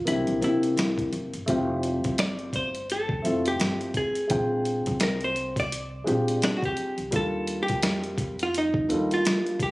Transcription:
0.05 C2 A#3 C4 D4 E4 G4, closed hi-hat
0.27 C2, closed hi-hat
0.40 C3 A#3 C4 D4 E4 G4, closed hi-hat
0.63 closed hi-hat
0.77 C2, snare, closed hi-hat
0.98 kick, closed hi-hat
1.12 F1, closed hi-hat
1.33 G1, closed hi-hat
1.46 F1 A3 C4 E4 F4 G4, kick, closed hi-hat
1.83 closed hi-hat
2.04 G1, kick, closed hi-hat
2.18 D5, snare, closed hi-hat
2.39 closed hi-hat
2.53 C5, kick, closed hi-hat
2.75 closed hi-hat
2.90 A4, closed hi-hat
3.09 kick
3.22 F1 A3 C4 E4 F4, closed hi-hat
3.26 A4
3.46 G4, closed hi-hat
3.59 G1, snare, closed hi-hat
3.81 closed hi-hat
3.94 G#4, kick, closed hi-hat
4.15 closed hi-hat
4.27 A#1 G#3 C4 D4 F4 G5, kick, closed hi-hat
4.65 closed hi-hat
4.86 C2, kick, closed hi-hat
5.00 A#4, snare, closed hi-hat
5.21 C5, closed hi-hat
5.36 closed hi-hat
5.56 D5, kick, closed hi-hat
5.72 closed hi-hat
6.04 A#1 G#3 C4 D4 F4 G4, closed hi-hat
6.28 closed hi-hat
6.42 D4, snare, closed hi-hat
6.57 F#4
6.62 G4, kick, closed hi-hat
6.77 closed hi-hat
6.98 C2, closed hi-hat
7.11 D#2 G3 A#3 D4 F4 A4, kick, closed hi-hat
7.16 A4
7.47 closed hi-hat
7.63 G4
7.68 F2, kick, closed hi-hat
7.83 snare, closed hi-hat
8.04 closed hi-hat
8.18 kick, closed hi-hat
8.39 F4, closed hi-hat
8.54 D#4, closed hi-hat
8.74 kick
8.87 D#2 F3 A#3 D4 F4 A4, closed hi-hat
8.94 G3
9.11 F4, closed hi-hat
9.25 snare, closed hi-hat
9.47 closed hi-hat
9.60 G4, kick, closed hi-hat

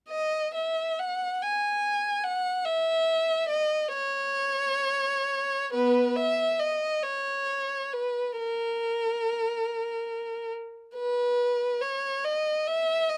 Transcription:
0.09 D#5
0.54 E5
0.99 F#5
1.42 G#5
2.24 F#5
2.65 E5
3.49 D#5
3.93 C#5
5.73 B3 B4
6.16 E5
6.60 D#5
7.03 C#5
7.93 B4
8.39 A#4
10.96 B4
11.81 C#5
12.24 D#5
12.67 E5
13.09 D#5

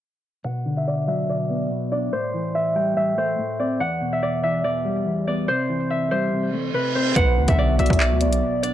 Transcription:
0.44 B2 F#5
0.66 D3
0.77 E5
0.87 D5
1.07 F#3 E5
1.29 B2 D5
1.50 B3
1.71 B2
1.92 D4 D5
2.12 A2 C5
2.34 E3
2.55 E5
2.75 G3 G5
2.97 A2 E5
3.17 A3 C5
3.38 A2
3.59 C4 D5
3.80 E2 F#5
4.01 B2
4.13 E5
4.23 D5
4.43 E3 E5
4.64 E2 D5
4.85 G3
5.06 E2
5.27 B3 D5
5.48 C3 C5
5.69 E3
5.90 E5
6.11 G3 C5
6.32 C3, reverse cymbal
6.53 A3
6.74 C3 B4
6.95 C4 C5
7.16 B1 B2 B3 F#4 B4 D5 F#5, kick, closed hi-hat, impact
7.37 D2 D3
7.48 B1 E5, kick, closed hi-hat
7.58 D5
7.79 B1 F#3 E5, closed hi-hat
7.86 closed hi-hat
7.90 B1, kick, closed hi-hat
8.00 B2 D5, clap
8.11 D2
8.21 B3 D5, closed hi-hat
8.27 B1
8.33 closed hi-hat
8.42 B2
8.63 D4 D5, closed hi-hat

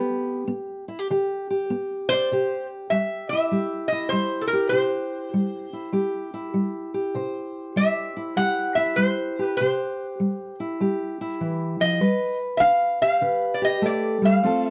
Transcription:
Already playing: G3 B3 G4
0.48 B3
0.88 E4
0.99 G4
1.10 D3 G4
1.50 G4
1.70 B3
2.09 C5 D5
2.32 C3 G4
2.90 G3 E5
3.29 E4 E5
3.51 G3 G4
3.88 D#5
3.92 E4
4.09 G3 C5
4.41 A4
4.47 A#4
4.53 G4
4.69 C3 G4 C5
5.34 G3
5.73 E4
5.92 G3 G4
6.34 E4
6.54 G3
6.94 G4
7.15 C3 C5
7.76 G3 E5
8.17 E4
8.36 G3 G4 F#5
8.75 E4 E5
8.96 G3 C5
9.39 G4 B4
9.57 C3 C5
9.61 G4
10.20 G3
10.60 E4
10.80 G3 G4
11.21 E4
11.41 E3
11.80 F3 D#5
12.01 G3 B4
12.57 D4 E5 F5
13.01 G4 F5
13.21 D3 B4
13.54 D5
13.62 G4 D#5
13.82 A3 D5
14.22 G3 F5
14.43 F3 A3 C4 F4 A4
14.65 E5

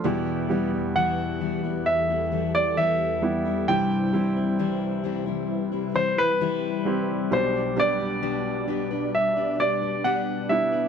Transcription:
0.04 E2 B2 E3 G3 B3 E4 G4 B4
0.49 E3 G3 B3 E4 G4
0.73 G3 B3 E4
0.96 E3 G3 B3 E4 F#5
1.41 E3 G3 B3 E4
1.63 G3 B3 E4
1.86 A4 E5
2.09 G3 B3 E4
2.32 E3 G3 B3 E4
2.54 G3 B3 E4 D5
2.77 E3 G3 B3 E4 E5
3.22 G3 B3 E4 G4
3.45 G3 B3 E4
3.68 C2 G2 C3 E3 G3 C4 E4 G4 C5 G5
4.13 E3 G3 C4 E4 G4
4.36 G3 C4 E4
4.59 C3 E3 G3 C4 E4
5.04 E3 G3 C4 E4
5.26 G3 C4 E4
5.49 B4
5.72 G3 C4 E4
5.94 E3 G3 C4 E4 C5
6.17 G3 C4 E4 B4
6.41 C3 E3 G3 C4 E4
6.85 G3 C4 E4 G4
7.31 B1 B2 G3 D4 G4 C5 D5
7.76 G3 B3 D4 G4 B4 D5
7.99 D4 G4 B4
8.22 B3 D4 G4 B4
8.68 B3 D4 G4 B4
8.91 D4 G4 B4
9.15 E5
9.37 D4 G4 B4
9.59 B3 D4 G4 B4 D5
9.81 D4 G4 B4
10.04 B3 D4 G4 B4 F#5
10.49 G3 B3 D4 E4 E5
10.72 D4 G4 B4

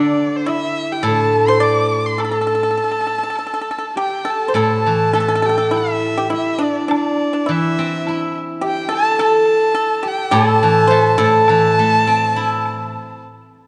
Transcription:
Already playing: D3 D4 E4 D5
0.36 C5
0.46 E4 E5, low woodblock
0.92 G4 G5
1.03 A2 A4 A5, high woodblock
1.07 A4
1.47 C5 C6
1.60 D5 D6
2.06 C6
2.18 A4 A5, high woodblock
2.24 A4
2.31 A4
2.41 A4
2.47 A4
2.55 A4
2.63 A4
2.71 A4
2.77 A4
2.84 A4
2.91 A4
3.01 A4
3.07 A4
3.18 A4
3.23 A4
3.30 A4
3.36 A4, high woodblock
3.47 A4
3.54 A4
3.61 A4
3.71 A4
3.78 A4
3.96 G4, high woodblock
4.00 G5
4.25 A4
4.30 A5
4.48 C5
4.54 A2 A4, high woodblock
4.59 A5
4.86 E3
5.13 A3 A4
5.20 A4
5.28 A4
5.35 A4
5.42 G4 A4 G5
5.49 A4
5.58 A4
5.71 E4, high woodblock
5.76 E5
6.18 G4
6.30 E4, low woodblock
6.34 E5
6.58 D4
6.63 D5
6.88 D4, high woodblock
6.93 D5
7.33 D4
7.46 E3 E4
7.51 E5
7.79 C4
8.07 E4, high woodblock
8.61 G4, low woodblock
8.67 G5
8.89 A4
8.93 A5
9.19 A4 A5, high woodblock
9.75 A4
10.03 G4
10.07 G5
10.31 A2 A4, high woodblock
10.36 A5
10.63 E3
10.87 A3 C5, low woodblock
11.18 A2 A4 A5
11.48 E3, high woodblock
11.79 A3
12.06 C4, high woodblock
12.36 E4
12.65 high woodblock

